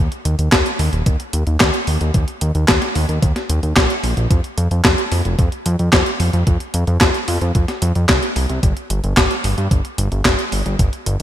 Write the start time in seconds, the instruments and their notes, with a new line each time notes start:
0.12 closed hi-hat
0.25 analog synth bass D#2, closed hi-hat
0.39 analog synth bass D#2, closed hi-hat
0.52 analog synth bass D#2, kick, snare, clap, closed hi-hat
0.66 closed hi-hat
0.79 analog synth bass D#2, open hi-hat
0.93 analog synth bass D#1, closed hi-hat
1.06 analog synth bass D#2, kick, closed hi-hat
1.20 closed hi-hat
1.33 analog synth bass D#2, closed hi-hat
1.47 analog synth bass D#2, closed hi-hat
1.60 analog synth bass D#2, kick, snare, clap, closed hi-hat
1.74 closed hi-hat
1.87 analog synth bass D#2, open hi-hat
2.01 analog synth bass D#2, closed hi-hat
2.14 analog synth bass D#2, kick, closed hi-hat
2.28 closed hi-hat
2.41 analog synth bass D#2, closed hi-hat
2.55 analog synth bass D#2, closed hi-hat
2.68 analog synth bass D#2, kick, snare, clap, closed hi-hat
2.82 snare, closed hi-hat
2.95 analog synth bass D#2, open hi-hat
3.09 analog synth bass D#2, closed hi-hat
3.22 analog synth bass D#2, kick, closed hi-hat
3.36 snare, closed hi-hat
3.50 analog synth bass D#2, closed hi-hat
3.63 analog synth bass D#2, closed hi-hat
3.77 analog synth bass A#1, kick, snare, clap, closed hi-hat
3.90 closed hi-hat
4.04 analog synth bass A#1, open hi-hat
4.17 analog synth bass A#1, closed hi-hat
4.30 analog synth bass F2, kick, closed hi-hat
4.44 closed hi-hat
4.58 analog synth bass F2, closed hi-hat
4.71 analog synth bass F2, closed hi-hat
4.85 analog synth bass F2, kick, snare, clap, closed hi-hat
4.98 closed hi-hat
5.12 analog synth bass F2, open hi-hat
5.25 analog synth bass F1, closed hi-hat
5.39 analog synth bass F2, kick, closed hi-hat
5.52 closed hi-hat
5.66 analog synth bass F2, closed hi-hat
5.79 analog synth bass F2, closed hi-hat
5.93 analog synth bass F2, kick, snare, clap, closed hi-hat
6.06 closed hi-hat
6.20 analog synth bass F2, open hi-hat
6.33 analog synth bass F2, closed hi-hat
6.47 analog synth bass F2, kick, closed hi-hat
6.60 closed hi-hat
6.74 analog synth bass F2, closed hi-hat
6.87 analog synth bass F2, closed hi-hat
7.01 analog synth bass F2, kick, snare, clap, closed hi-hat
7.14 closed hi-hat
7.28 analog synth bass F2, open hi-hat
7.41 analog synth bass F2, closed hi-hat
7.55 analog synth bass F2, kick, closed hi-hat
7.68 snare, closed hi-hat
7.82 analog synth bass F2, closed hi-hat
7.95 analog synth bass F2, closed hi-hat
8.09 analog synth bass C2, kick, snare, clap, closed hi-hat
8.23 closed hi-hat
8.36 analog synth bass C2, open hi-hat
8.49 analog synth bass C2, closed hi-hat
8.63 analog synth bass G1, kick, closed hi-hat
8.77 closed hi-hat
8.90 analog synth bass G1, closed hi-hat
9.04 analog synth bass G1, closed hi-hat
9.17 analog synth bass G1, kick, snare, clap, closed hi-hat
9.31 closed hi-hat
9.44 analog synth bass G1, open hi-hat
9.58 analog synth bass G2, closed hi-hat
9.71 analog synth bass G1, kick, closed hi-hat
9.85 closed hi-hat
9.98 analog synth bass G1, closed hi-hat
10.12 analog synth bass G1, closed hi-hat
10.25 analog synth bass G1, kick, snare, clap, closed hi-hat
10.39 closed hi-hat
10.52 analog synth bass G1, open hi-hat
10.66 analog synth bass G1, closed hi-hat
10.79 analog synth bass G1, kick, closed hi-hat
10.93 closed hi-hat
11.06 analog synth bass G1, closed hi-hat